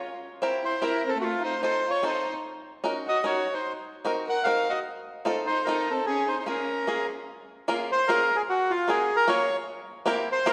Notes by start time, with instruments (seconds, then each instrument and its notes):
0.42 five-string banjo C4 E4 G4 A#4
0.63 violin E4, bandoneon C5
0.79 five-string banjo C4 E4 G4, violin E4, bandoneon A#4
0.83 five-string banjo A#4
1.06 violin C4, bandoneon A4
1.16 violin A3
1.21 bandoneon F4 F#4
1.42 violin D#4, bandoneon C5
1.60 five-string banjo C4 D#4 F4, violin D#4, bandoneon C5
1.64 five-string banjo A4
1.88 violin F4, bandoneon C#5
2.03 five-string banjo C4 D#4 F4 A4, violin D#4, bandoneon C5
2.84 five-string banjo C#4 D#4 F#4 A#4
3.07 violin F#4, bandoneon D#5
3.24 five-string banjo C#4 D#4 F#4 A#4, violin F#4, bandoneon C#5
3.54 violin D#4, bandoneon C5
4.05 five-string banjo C4 D#4 F#4 A#4
4.27 violin A#4, bandoneon F#5
4.44 five-string banjo C4 D#4 F#4 A#4, violin A#4, bandoneon F5
4.70 violin F#4, bandoneon D#5
5.25 five-string banjo C4 D#4 F4 A4
5.46 violin D#4, bandoneon C5
5.65 five-string banjo C4 D#4 F4 A4, violin D#4, bandoneon A#4
5.90 violin C4, bandoneon A4
6.06 violin C#4, bandoneon G#4
6.28 violin D#4, bandoneon C5
6.39 violin D#4, bandoneon C5
6.46 five-string banjo A#3 C#4 F4 G#4, violin C#4, bandoneon A#4
6.87 five-string banjo A#3 C#4 F4 G#4
7.68 five-string banjo A#3 C#4 F4 G#4 A#4
7.92 bandoneon C5
8.08 five-string banjo A#3 C#4 F4 G#4 A#4, bandoneon A#4
8.36 bandoneon G#4
8.49 bandoneon F#4
8.71 bandoneon F4
8.88 five-string banjo A#3 C#4 F4 F#4 A#4, bandoneon G#4
9.16 bandoneon A#4
9.28 five-string banjo A#3 C#4 F4 F#4 A#4, bandoneon C#5
10.06 five-string banjo A#3 C4 E4 G4 A#4
10.32 bandoneon C5
10.46 five-string banjo A#3 C4 E4 G4 A#4